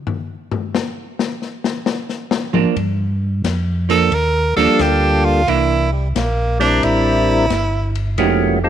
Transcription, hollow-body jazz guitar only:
2.53 F3 A#3 D4
3.89 F3 A#3 D4
4.58 F3 A#3 D4
5.48 E3 A#3 D4
8.18 F3 A3 D#4 G4

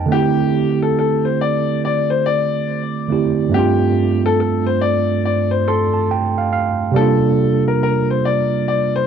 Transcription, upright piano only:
0.12 G4
0.82 A4
0.99 A4
1.25 C5
1.41 D5
1.85 D5
2.10 C5
2.26 D5
3.54 G4
4.26 A4
4.40 A4
4.67 C5
4.82 D5
5.25 D5
5.51 C5
5.68 A4
6.96 A4
7.68 A#4
7.83 A#4
8.10 C5
8.25 D5
8.68 D5
8.96 C5

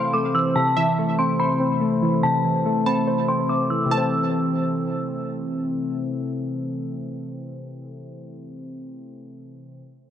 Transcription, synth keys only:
Already playing: C3 E3 A3 C4 C5
0.14 A3
0.34 E3
0.56 C3
0.77 E3
0.99 A3
1.19 C4
1.39 C5
1.60 C4
1.81 A3
2.02 E3
2.23 C3
2.44 E3
2.66 A3
2.86 C4
3.07 C5
3.28 C4
3.49 A3
3.70 E3
3.85 C3 E3
3.93 A3 C4

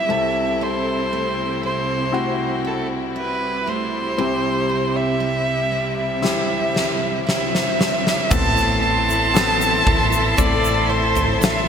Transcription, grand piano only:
Already playing: B3 E4 G4
0.09 C2 C3 C4 E4 A4
2.12 C4 E4 F#4
4.18 C2 C3 C4 E4 G4
6.22 C4 E4 G4
8.30 A2 B3 C4 A4
9.34 B3 C4 A4
10.38 A3 C4 A4

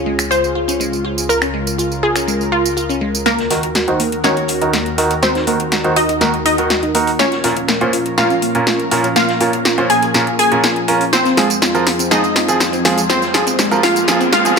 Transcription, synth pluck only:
Already playing: G#4
0.31 C5
1.29 A#4
2.03 G#4
2.52 F4
3.26 A#3 A#4
4.24 C#4 C#5
5.23 C4 C5
5.96 D#4 D#5
6.46 D#4 D#5
7.19 C#4 C#5
8.18 F4 F5
9.16 F4 F5
9.90 G#4 G#5
10.39 G#4 G#5
11.13 C4 C5
12.11 D#4 D#5
13.10 C4 C5
13.83 F4 F5
14.33 F4 F5

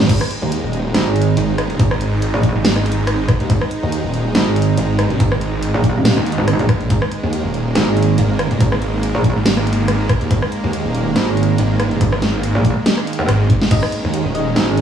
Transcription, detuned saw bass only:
0.42 D#2
0.64 D#1
1.37 G#1
1.91 G#1
2.55 G#1
3.40 D#2
3.83 D#2
4.04 D#1
4.77 G#1
5.32 G#1
6.17 D#2
6.69 A#1
7.23 D#2
7.44 D#1
8.18 G#1
8.72 G#1
9.36 G#1
10.21 D#2
10.64 D#2
10.85 D#1
11.58 G#1
12.13 G#1
13.29 G#1
13.50 G#1
14.04 D#2
14.25 D#1

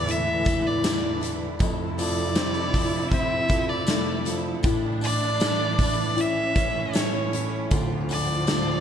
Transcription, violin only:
Already playing: D5
0.11 E5
0.67 D5
1.99 D5
3.10 E5
3.69 D5
5.04 D5
6.20 E5
6.96 C#5
8.12 D5

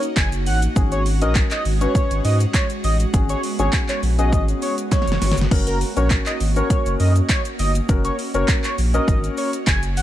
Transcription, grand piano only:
0.76 C#4 F#4 G#4
1.22 C#4 F#4 A#4
1.81 C#4 F#4 B4
3.14 C#4 F#4 G#4
3.59 C#4 F#4 G#4
4.18 C#4 F#4 G#4
5.51 C#4 F#4 A#4
5.96 C#4 F#4 A#4
6.56 C#4 F#4 A#4
7.89 C#4 F#4 A#4
8.34 C#4 F#4 A#4
8.94 C#4 F#4 A#4

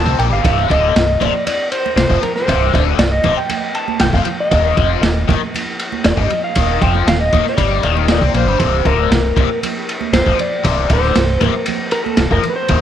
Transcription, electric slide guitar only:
Already playing: A5
0.19 G5
0.33 F5
0.71 D#5
1.22 D5
1.47 D5
1.72 C5
1.97 C5
2.23 A#4
2.36 C5
2.99 D5
3.12 D#5
3.37 G5
3.75 A5
4.01 G5
4.15 F5
4.40 D#5
6.06 D5
6.18 D#5
6.44 F5
6.82 G5
7.09 F5
7.20 D#5
7.49 D5
8.12 D5
8.37 C5
8.86 A#4
10.13 C5
10.41 D5
10.93 C5
11.45 A#4
11.92 A#4
12.04 A4
12.32 A#4
12.50 B4
12.56 C5

